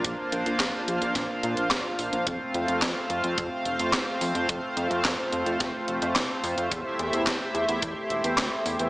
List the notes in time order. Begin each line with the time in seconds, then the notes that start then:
Already playing: A#3 D4 F4 F5
0.05 A#1 C5, kick, closed hi-hat
0.32 A#1, closed hi-hat
0.46 A#1, closed hi-hat
0.60 A#1, kick, snare, clap, closed hi-hat
0.88 A#1, closed hi-hat
1.02 A#1, closed hi-hat
1.15 A#1, kick, snare, closed hi-hat
1.43 A#2, closed hi-hat
1.57 A#1, closed hi-hat
1.71 F1, kick, snare, clap, closed hi-hat
1.99 A#1, open hi-hat
2.13 A#1, closed hi-hat
2.27 F2 A3 C4, kick, closed hi-hat
2.54 F2, closed hi-hat
2.68 F2, closed hi-hat
2.82 F2, kick, snare, clap, closed hi-hat
3.10 F2, closed hi-hat
3.24 F2, closed hi-hat
3.38 F2, kick, closed hi-hat
3.65 F1, closed hi-hat
3.79 F2, closed hi-hat
3.93 C2, kick, snare, clap, closed hi-hat
4.21 F2, open hi-hat
4.35 F2, closed hi-hat
4.49 F2, kick, closed hi-hat
4.77 F2, closed hi-hat
4.91 F2, closed hi-hat
5.05 F2, kick, snare, clap, closed hi-hat
5.32 F2, closed hi-hat
5.46 F2, closed hi-hat
5.60 F2, kick, snare, closed hi-hat
5.88 F1, closed hi-hat
6.02 F2, closed hi-hat
6.16 C2, kick, snare, clap, closed hi-hat
6.44 F2, open hi-hat
6.58 F2, closed hi-hat
6.71 E2 E4 G4 E5, kick, closed hi-hat
6.99 E2, closed hi-hat
7.13 E2, closed hi-hat
7.27 E2, kick, snare, clap, closed hi-hat
7.55 E2, closed hi-hat
7.69 E2, closed hi-hat
7.82 E2, kick, closed hi-hat
8.10 E1, closed hi-hat
8.24 E2, closed hi-hat
8.38 D2, kick, snare, clap, closed hi-hat
8.66 E2, open hi-hat
8.79 E2, closed hi-hat